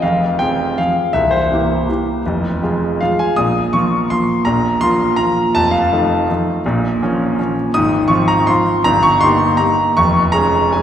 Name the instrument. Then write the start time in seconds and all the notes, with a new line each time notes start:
grand piano
0.02 F1 F2 F5
0.39 F3 C4 G#4 G5
0.78 F3 C4 G#4 F5
1.13 C1 C2 E5
1.31 C5
1.52 E3 A#3 G4
1.89 E3 A#3 G4
2.26 F1 F2
2.63 F3 G#3 F4
3.01 F3 G#3 F4 F5
3.19 G#5
3.36 A#1 A#2 D#6
3.73 F3 A#3 F4 C#6
4.10 F3 A#3 F4 C6
4.45 A#1 A#2 A#5
4.81 F3 A#3 F4 C6
5.16 F3 A#3 F4 A#5
5.55 F1 F2 A5
5.71 F5
5.92 F3 A3 D#4
6.30 F3 A3 D#4
6.66 A#1 A#2
7.02 F3 A#3 C#4
7.38 F3 A#3 C#4
7.74 G#1 G#2 D#6
8.08 F3 C4 F4 C#6
8.28 A#5
8.47 F3 C4 F4 C6
8.84 G1 G2 A#5
9.03 C#6
9.21 A#3 D#4 G4 C6
9.57 A#3 D#4 G4 A#5
9.97 F1 F2 C#6
10.32 G#3 C#4 G#4 A#5
10.72 G#3 C#4 G#4 G#5